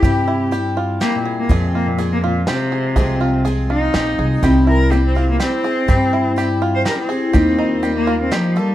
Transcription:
<<
  \new Staff \with { instrumentName = "Five-string banjo" } { \time 3/4 \key c \phrygian \tempo 4 = 123 g'8 e'8 g'8 f'8 g'8 aes'8 | aes'8 f'8 aes'8 f'8 g'8 aes'8 | aes'8 f'8 aes'8 f'8 g'8 aes'8 | g'8 e'8 g'8 f'8 g'8 aes'8 |
g'8 e'8 g'8 f'8 g'8 aes'8 | g'8 ees'8 g'8 f'8 g'8 a'8 | }
  \new Staff \with { instrumentName = "Marimba" } { \time 3/4 \key c \phrygian r2. | r2. | r2. | c'2.~ |
c'2. | ees'2. | }
  \new Staff \with { instrumentName = "Twelve-string acoustic guitar" } { \time 3/4 \key c \phrygian <c g c' e' g'>4 <g c' e' g'>4 <g c' e' g'>4 | <f, c f aes c' f'>4 <f aes c' f'>4 <f aes c' f'>4 | <f, c f aes c' f'>4 <f aes c' f'>4 <f aes c' f'>4 | <c g c' e' g'>4 <g c' e' g'>8 <c' e' g'>8 <g c' e' g'>8 <c' e' g'>8 |
<c g c' e' g'>4 <g c' e' g'>4 <g c' e' g'>8 <c' e' g'>8 | <ees g bes ees' f'>4 <g bes ees' f'>4 <g bes ees' f'>8 <bes ees' f'>8 | }
  \new Staff \with { instrumentName = "Cello" } { \time 3/4 \key c \phrygian g'4 r4 bes16 bes,16 r16 bes16 | bes,16 r16 bes16 bes,16 r16 bes16 bes,8 c4~ | c4 r8 ees'4. | r8 bes'8 bes16 c'8 bes16 c'4~ |
c'4 r8. c''16 bes'16 c'8.~ | c'4~ c'16 bes8 c'16 f8 g8 | }
  \new Staff \with { instrumentName = "Upright bass" } { \clef bass \time 3/4 \key c \phrygian g,2 r4 | f,2 r4 | c,2 bes,,8 c,8 | c,2 r4 |
g,2 r4 | ees,2 r4 | }
  \new DrumStaff \with { instrumentName = "Drums" } \drummode { \time 3/4 <hh bd>4 hh4 <hh sn>4 | <hh bd>4 hh4 <hh sn>4 | <hh bd>4 hh4 <hh sn>4 | <hh bd>4 hh4 <hh sn>4 |
<hh bd>4 hh4 <hh sn>4 | <hh bd>4 hh4 <hh sn>4 | }
>>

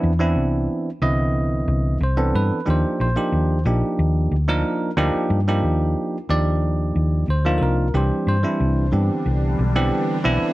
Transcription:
<<
  \new Staff \with { instrumentName = "Tine electric piano" } { \time 4/4 \key c \major \tempo 4 = 91 << { r4. ees''4. c''8 b'8 | c''8 c''4 r2 r8 | r4. d''4. c''8 <a' bes'>8 | c''8 c''4 r2 r8 | } \\ { <e b c' d' e'>16 <e b c' d' e'>4 r16 <d e b c' e'>4. r16 <e b c' d' a'>8. | <f bes d' ees' g'>8. <f bes d' ees' g'>8. <f bes d' ees' g'>4 r16 <f bes d' ees' bes'>8. <f bes d' ees' g'>8~ | <f bes d' ees' g'>16 <f bes d' ees' g'>4 r16 <f bes d' ees' g'>4. r16 <f bes d' ees' f'>8. | <e g c' d' g'>8. <e g c' d' e'>8. <e b c' d' g'>4 r16 <e b c' d' g'>8. <e b c' d' e'>8 | } >> }
  \new Staff \with { instrumentName = "Ambient pad" } { \clef bass \time 4/4 \key c \major r1 | r1 | r1 | <d e g d'>1 | }
  \new Staff \with { instrumentName = "Fingered electric bass" } { \clef bass \time 4/4 \key c \major e,8 c,8 r8 c,4 c,8 c,8 g,16 r16 | ees,16 r16 bes,,16 r16 ees,8 bes,,16 r16 ees,8 d,8 r8 d,16 r16 | g,8 ees,8 r8 ees,4 ees,8 d,8 c,8 | c,16 r16 g,16 r16 c,8 g,16 r16 c,8 b,,8 r8 b,,16 r16 | }
>>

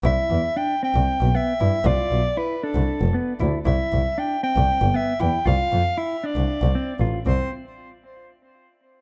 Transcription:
<<
  \new Staff \with { instrumentName = "Soprano saxophone" } { \time 7/8 \key c \major \tempo 4 = 116 e''4 g''8 g''4 e''4 | d''4 b'8 a'4 r4 | e''4 g''8 g''4 e''8 g''8 | f''4 e''8 d''4. r8 |
c''8 r2. | }
  \new Staff \with { instrumentName = "Clean electric guitar" } { \time 7/8 \key c \major e'4 d'8 c'4 b8 e'8 | f'4 e'8 d'4 b8 e'8 | e'4 d'8 c'4 b8 e'8 | f'4 e'8 d'4 c'8 f'8 |
c'8 r2. | }
  \new Staff \with { instrumentName = "Double bass" } { \clef bass \time 7/8 \key c \major c,8 e,4~ e,16 c,8 b,,8 r16 g,8 | c,8 b,,4~ b,,16 c,8 f,,8 r16 d,8 | c,8 c,4~ c,16 c,8 g,,8 r16 e,8 | c,8 f,4~ f,16 c,8 c,8 r16 a,,8 |
c,8 r2. | }
>>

